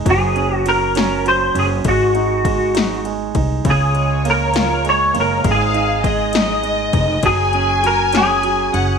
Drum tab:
RD |xxxxxx|xxxxxx|xxxxxx|xxxxxx|
SD |---o--|---o--|---o--|---o--|
BD |o-----|o-o--o|o-----|o-o--o|

RD |xxxxxx|
SD |---o--|
BD |o-----|